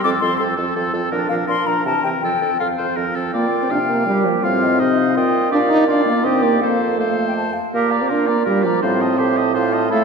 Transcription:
0.04 F2 F3 C4 A4 D6
0.20 F2 F3 C4 A4 C6
0.37 F2 F3 C4 A4 C6
0.57 F2 F3 C4 A4
0.76 F2 F3 C4 A4
0.93 F2 F3 C4 A4
1.12 A#2 F3 D4 A#4
1.29 A#2 F3 D4 A#4 F5
1.47 A#2 F3 D4 A#4 C6
1.66 A#2 F3 D4 A#4 A#5
1.84 C3 E3 C4 A#4 A5
2.03 C3 E3 C4 A#4 G5
2.20 F2 F3 C4 G5
2.24 A4
2.40 F2 F3 C4 A4
2.59 F2 F3 C4 F4 F5
2.78 F2 F3 C4 C5
2.96 F2 F3 C4 A#4
3.14 F2 F3 C4 A4
3.33 A#2 A#3 F4 D5 G5
3.63 C4
3.70 C3 D4 F5
3.89 A#3
4.05 A#2 G3 G4
4.25 F3
4.42 A2 C4 F4 F5
4.63 D#5
4.79 C3 D#4 D#5
4.98 F5
5.16 A#2 F4 D#5 G5
5.51 A#2 D4 G4 D5 F5
5.69 D#4
5.87 D4 F4 D5 F5
6.06 A#3
6.24 D#2 C4 G4 D#5 G5
6.43 A#3 D5
6.61 F2 A#3 A4 C5 F5
6.98 A3 C5 F5
7.28 G5
7.37 A5
7.53 F5
7.74 A#2 A#3 G4 A#4 F5
7.91 D5 A#5
8.02 C4
8.08 A#2 D4 F4 A#4 F5
8.27 A#3 D5 A#5
8.45 A#2 G3 G4 A#4 F5
8.63 F3 D5 A#5
8.82 A2 C4 F4 C5 F5
9.01 D#5 A5
9.18 A2 G4 C5 F5
9.37 D#5 A5
9.54 A2 F4 C5 F5
9.73 D#5 A5
9.90 A2 A3 E4 A4 F5

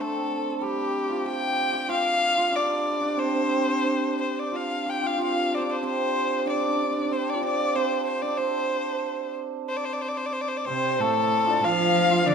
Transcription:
Already playing: C4 D4
0.00 A3 A4
0.59 G3 G4 A4
1.09 F4
1.25 G4 G5
1.73 G4
1.89 F4 F5
2.37 F4
2.52 D4
2.56 D5
3.01 D4
3.17 C4 C5
3.26 C4
3.34 C4
3.42 C4
3.49 C4
3.57 C4
3.67 C4
3.73 C4
3.85 D4
4.21 C5
4.39 D5
4.52 F4
4.56 F5
4.86 G4 G5
5.04 F4 F5
5.18 F4
5.23 F5
5.54 C5 D5
5.60 D4 D5
5.70 C5
5.83 C4 C5
6.46 D4 D5
6.55 D4
6.61 D4
6.69 D4
6.77 D4
6.84 D4
6.91 D4
6.99 D4
7.05 D4
7.11 C4 C5
7.30 D5
7.34 F4
7.42 D4 D5
7.75 C4 C5
8.05 C5
8.22 D4 D5
8.38 C4 C5
9.69 C5
9.76 D5
9.85 C5
9.93 D5
10.01 C5
10.08 D5
10.17 C5
10.26 D5
10.33 C5
10.41 D5
10.48 C5
10.57 D5
10.65 C3 C4 C5
11.00 A2 A3 A4
11.44 D4 F4
11.49 D5
11.62 F3 F4 F5
12.11 F4
12.26 D3 D4 D5

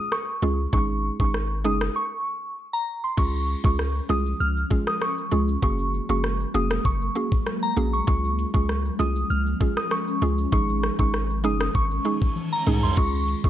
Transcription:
0.12 C#6, cross-stick
0.42 C#2 G#3 C#4 F4 G#4
0.73 G#1 G#3 C#4 D#4 G#4 C#6, kick
1.20 G#1 G#3 C#4 D#4 G#4 C#6, kick
1.34 cross-stick
1.64 F#1 G#3 C#4 D#4 G#4 D#6
1.81 cross-stick
1.96 C#6
2.73 A#5
3.04 C6
3.17 C#2 F3 G#3 C#4 F4 G#4 C#6, kick, crash, shaker
3.34 shaker
3.49 shaker
3.64 C#2 G#3 C#4 F4 G#4 C#6, kick, shaker
3.79 cross-stick, shaker
3.95 shaker
4.09 C2 G#3 C#4 F4 G#4 D#6, shaker
4.26 shaker
4.40 C#2 F6, shaker
4.57 shaker
4.70 G#3 C#4 F4 G#4, kick, shaker
4.87 D#6, cross-stick, shaker
5.02 C#6, cross-stick, shaker
5.18 shaker
5.31 C#2 G#3 C#4 F4 G#4, shaker
5.48 shaker
5.62 F#1 F#3 A#3 C#4 F#4 G#4 C#6, kick, shaker
5.79 shaker
5.94 shaker
6.09 F#1 A#3 C#4 F#4 G#4 C#6, shaker
6.24 cross-stick, shaker
6.40 shaker
6.54 F1 A#3 C#4 F#4 G#4 D#6, shaker
6.71 cross-stick, shaker
6.85 F#1 C#6, kick, shaker
7.01 shaker
7.15 A#3 C#4 F#4 G#4, shaker
7.32 kick, shaker
7.47 cross-stick, shaker
7.63 A#5, shaker
7.76 A#1 A#3 C#4 F#4 G#4, shaker
7.93 C#6, shaker
8.07 C#2 F3 G#3 C#4 F4 G#4 C#6, kick, shaker
8.24 shaker
8.39 closed hi-hat, shaker
8.54 C#2 G#3 C#4 F4 G#4 C#6, kick, shaker
8.69 cross-stick, shaker
8.86 shaker
8.99 C2 G#3 C#4 F4 G#4 D#6, closed hi-hat, shaker
9.16 shaker
9.30 C#2 F6, shaker
9.46 shaker
9.60 G#3 C#4 F4 G#4, kick, closed hi-hat, shaker
9.77 D#6, cross-stick, shaker
9.91 C#6, cross-stick, shaker
10.08 shaker
10.22 C#2 G#3 C#4 F4 G#4, closed hi-hat, shaker
10.38 shaker
10.52 G#1 D#3 G#3 C#4 D#4 G#4 C#6, kick, shaker
10.69 shaker
10.83 cross-stick, closed hi-hat, shaker
10.99 G#1 G#3 C#4 D#4 G#4 C#6, kick, shaker
11.14 cross-stick, shaker
11.30 shaker
11.44 F#1 G#3 C#4 D#4 G#4 D#6, closed hi-hat, shaker
11.61 cross-stick, shaker
11.75 G#1 C#6, kick, reverse cymbal, shaker
11.91 shaker
12.05 G#3 C#4 D#4 G#4, closed hi-hat, shaker
12.22 kick, shaker
12.36 high tom, shaker
12.52 A#5, shaker
12.66 C2 G#3 C#4 D#4 G#4, closed hi-hat, mid tom, shaker
12.83 C6, floor tom, shaker
12.97 C#2 F3 G#3 C#4 F4 G#4 C#6, kick, crash, shaker
13.14 shaker
13.28 closed hi-hat, shaker
13.44 C#2 G#3 C#4 F4 G#4 C#6, kick, shaker

